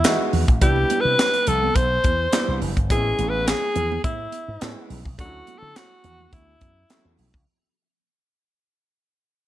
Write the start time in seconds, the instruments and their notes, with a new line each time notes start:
Already playing: alto saxophone E4
0.04 slap bass E3, grand piano G#3 B3 D#4 F#4, snare, clap, closed hi-hat, muted conga, high conga
0.19 muted conga
0.33 slap bass E2, open hi-hat, low conga
0.48 slap bass A1, kick, closed hi-hat
0.61 slap bass C2, grand piano G3 B3 D4 E4, alto saxophone G4, kick, closed hi-hat
0.76 muted conga
0.90 closed hi-hat, high conga
1.01 alto saxophone B4
1.05 slap bass C3
1.18 snare, clap, closed hi-hat, muted conga
1.34 closed hi-hat, muted conga
1.47 slap bass C2, alto saxophone A4, closed hi-hat, low conga
1.64 high conga
1.76 slap bass B1, alto saxophone C5, kick, closed hi-hat, muted conga, high conga
2.04 slap bass E2, kick, closed hi-hat, high conga
2.32 grand piano G3 B3 D4 E4, snare, clap, closed hi-hat, muted conga, high conga
2.48 slap bass C2, muted conga
2.62 slap bass F#1, open hi-hat, low conga
2.77 slap bass G1, kick, closed hi-hat
2.90 slap bass A1, grand piano G#3 B3 C4 E4, alto saxophone G#4, kick, closed hi-hat
2.97 grand piano C#4
3.19 slap bass A1, closed hi-hat, high conga
3.29 alto saxophone B4
3.48 alto saxophone G#4, snare, clap, closed hi-hat
3.62 muted conga
3.76 slap bass E2, closed hi-hat, low conga
3.92 high conga
4.04 slap bass A2, alto saxophone E4, kick, closed hi-hat, muted conga, high conga
4.20 muted conga
4.32 closed hi-hat, high conga
4.48 slap bass G#2
4.61 slap bass A2, grand piano G#3 B3 C#4 E4, snare, clap, closed hi-hat, high conga
4.76 muted conga
4.90 slap bass B1, open hi-hat, low conga
5.05 slap bass B1, kick
5.18 slap bass D2, grand piano F#3 A3 C#4 D4, alto saxophone F#4, kick, closed hi-hat, muted conga
5.25 grand piano E4
5.47 closed hi-hat, high conga
5.58 alto saxophone A4
5.62 slap bass D3
5.76 alto saxophone F#4, snare, clap, closed hi-hat
6.04 slap bass E2, closed hi-hat, low conga
6.20 high conga
6.33 slap bass D2, alto saxophone E4, kick, closed hi-hat, high conga
6.61 slap bass F#2, kick, closed hi-hat, high conga
6.90 grand piano F#3 A3 C#4 E4, snare, clap, closed hi-hat, muted conga, high conga
7.05 slap bass E2, muted conga
7.19 slap bass B1, open hi-hat, low conga
7.34 slap bass C#2, kick